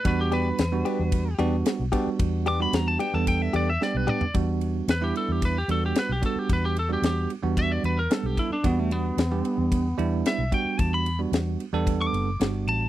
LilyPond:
<<
  \new Staff \with { instrumentName = "Lead electric guitar" } { \time 4/4 \key e \minor \tempo 4 = 112 b'16 g'16 b'2 r4. | r8 d'''16 b''16 ais''16 a''16 g''16 a''16 g''16 e''16 d''16 e''16 d''16 b'16 d''8 | r4 b'16 g'16 a'16 g'16 b'16 g'16 a'16 g'16 b'16 g'16 a'16 g'16 | b'16 g'16 a'16 g'16 g'8 r8 e''16 d''16 b'16 ais'16 a'16 g'16 e'16 d'16 |
b16 a16 b2 r8 e''8 g''8 | a''16 b''8 r4. d'''4~ d'''16 a''8 | }
  \new Staff \with { instrumentName = "Clean electric guitar" } { \time 4/4 \key e \minor r8 <b d' g'>8 r8 <b d' g'>8 r8 <b d' g'>8 r8 <b d' g'>8 | r8 <b d' g'>8 r8 <b d' g'>8 r8 <b d' g'>8 r8 <b d' g'>8 | r1 | r1 |
r1 | r1 | }
  \new Staff \with { instrumentName = "Tine electric piano" } { \time 4/4 \key e \minor <g b d' fis'>4 r16 <g b d' fis'>4 r16 <g b d' fis'>8. r16 <g b d' fis'>8~ | <g b d' fis'>8 r16 <g b d' fis'>8. r16 <g b d' a'>4 r16 <g b d' g'>8. r16 | <g b d' fis'>4 r16 <g b d' e'>4 r16 <g b d' fis'>8. r16 <g b d' fis'>8~ | <g b d' fis'>8 r16 <g b d' fis'>8. r16 <g b d' fis'>4 r16 <g b d' a'>8. r16 |
<g b d' fis'>4 r16 <g b d' g'>4 r16 <g b d' e'>8. r16 <g b d' fis'>8~ | <g b d' fis'>8 r16 <g b d' fis'>8. r16 <g b d' a'>4 r16 <g b d' fis'>8. r16 | }
  \new Staff \with { instrumentName = "Fingered electric bass" } { \clef bass \time 4/4 \key e \minor e,4 e,8 r16 e,8. e,8 r16 b,,16 r8 | e,4 e,8 r16 e,8. e,8 r16 b,,16 r8 | e,4 e,8 r16 e,8. e,8 r16 b,,16 r8 | e,4 e,8 r16 e,8. e,8 r16 b,,16 r8 |
e,4 e,8 r16 e,8. e,8 r16 b,,16 r8 | e,4 e,8 r16 e,8. fis,,8 g,,8 a,,8 | }
  \new DrumStaff \with { instrumentName = "Drums" } \drummode { \time 4/4 <bd cymr>8 cymr8 <cymr sn>8 cymr8 <bd cymr>8 cymr8 <cymr sn>8 <bd cymr>8 | <bd cymr>8 cymr8 <cymr sn>8 cymr8 <bd cymr>8 cymr8 sn8 toml16 tomfh16 | <bd cymr>8 cymr8 <cymr sn>8 cymr8 <bd cymr>8 cymr8 <cymr sn>8 <bd cymr>8 | <bd cymr>8 cymr8 <cymr sn>8 cymr8 <bd cymr>8 cymr8 <cymr sn>8 <bd cymr>8 |
<bd cymr>8 cymr8 <cymr sn>8 cymr8 <bd cymr>8 cymr8 <cymr sn>8 <bd cymr>8 | <bd cymr>8 cymr8 <cymr sn>8 cymr8 <bd cymr>8 cymr8 <cymr sn>8 cymr8 | }
>>